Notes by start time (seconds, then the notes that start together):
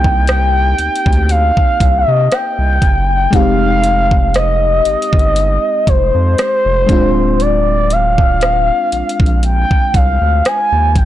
Already playing: C2 A#3 C4 D#4 G4 G5
0.04 kick
0.27 cross-stick, closed hi-hat
0.78 D2, closed hi-hat
0.96 closed hi-hat
1.06 D2, kick
1.13 closed hi-hat
1.29 F5, closed hi-hat
1.57 kick
1.80 C2, kick, closed hi-hat
1.99 D#5
2.08 C3
2.32 G5, cross-stick, closed hi-hat
2.58 C2
2.82 F#1, kick, closed hi-hat
3.30 F1 G#3 C4 D#4 F5, kick, closed hi-hat
3.36 G4
3.84 closed hi-hat
4.11 kick
4.34 D#5, cross-stick, closed hi-hat
4.85 G1, closed hi-hat
5.02 closed hi-hat
5.13 G1, kick
5.19 closed hi-hat
5.36 closed hi-hat
5.87 F1 C5, kick, closed hi-hat
6.14 F2
6.38 cross-stick, closed hi-hat
6.65 F1
6.86 D1 G#3 C4 D4, kick, closed hi-hat
6.92 F4
7.40 D5, closed hi-hat
7.90 F5, closed hi-hat
8.18 kick
8.41 cross-stick, closed hi-hat
8.92 A#1, closed hi-hat
9.09 closed hi-hat
9.20 A#1, kick
9.26 closed hi-hat
9.43 G5, closed hi-hat
9.71 kick
9.94 C2 F5, kick, closed hi-hat
10.21 D2
10.45 G#5, cross-stick, closed hi-hat
10.72 D#2
10.95 G#1 G5, kick, closed hi-hat